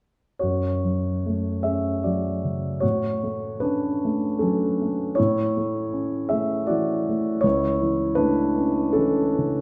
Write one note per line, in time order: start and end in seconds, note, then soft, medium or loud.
0.39 2.79 F#2 soft
0.39 1.60 F#4 soft
0.39 1.63 C#5 medium
0.85 1.49 F#3 soft
1.26 1.89 A3 soft
1.63 2.01 G#4 soft
1.63 2.03 E5 medium
1.67 2.29 C#4 soft
2.03 2.68 F#3 soft
2.03 2.79 F#4 soft
2.03 2.82 D5 soft
2.45 2.83 C#3 soft
2.80 5.13 A2 soft
2.80 3.58 F#4 soft
2.80 3.61 C#5 medium
3.23 3.87 A3 soft
3.60 4.25 C#4 soft
3.60 4.36 D4 soft
3.60 4.39 B4 medium
4.05 4.65 A3 soft
4.39 5.03 F#3 soft
4.39 5.13 C#4 soft
4.39 5.17 A4 medium
4.82 5.18 A3 soft
5.15 6.28 E4 soft
5.15 6.31 C#5 medium
5.19 7.41 A2 soft
5.57 6.18 A3 soft
5.93 6.55 C#4 soft
6.29 6.92 A3 soft
6.29 6.66 G#4 medium
6.29 6.69 E5 medium
6.67 7.29 E3 soft
6.67 7.38 F#4 medium
6.67 7.42 D5 medium
7.09 7.45 A3 soft
7.41 9.61 C#2 soft
7.41 8.14 E4 medium
7.41 8.17 C#5 medium
7.82 8.42 E3 soft
8.15 8.81 A3 soft
8.15 8.91 D4 medium
8.15 8.95 B4 medium
8.57 8.93 C#4 soft
8.93 9.61 E3 soft
8.93 9.61 C#4 soft
8.93 9.61 A4 medium
9.38 9.61 C#3 soft